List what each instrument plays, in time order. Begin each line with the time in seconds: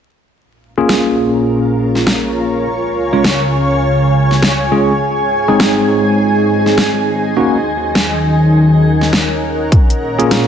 0.29 analog synth pad A#2 A#3 G#4 C#5, ambient pad F4
0.50 ambient pad A#4
0.77 tine electric piano A#3 C#4 F4 G#4
0.87 ambient pad C#5, snare
1.39 ambient pad G#5
1.95 snare
2.07 snare
2.66 analog synth pad C#3 C#4 F5
3.13 tine electric piano G#3 C#4 F4 C#5
3.24 snare
3.39 ambient pad G#4
4.31 snare
4.42 snare
4.72 tine electric piano G#3 C#4 F4 G#4
5.01 analog synth pad G#3 C5 D#5, ambient pad D#4
5.48 tine electric piano G#3 C4 D#4 G#4
5.60 snare
6.66 snare
6.78 snare
7.36 analog synth pad D#3 D#4 F#4 C#5, tine electric piano A#3 C#4 D#4 F#4
7.56 ambient pad A#4
7.95 snare
8.29 ambient pad F#5
8.45 ambient pad C#5
9.01 snare
9.13 snare
9.71 analog synth pad A#2 A#3 G#4, ambient pad F4, kick, closed hi-hat
9.90 closed hi-hat
10.18 tine electric piano A#3 C#4 F4 G#4, closed hi-hat
10.31 snare, closed hi-hat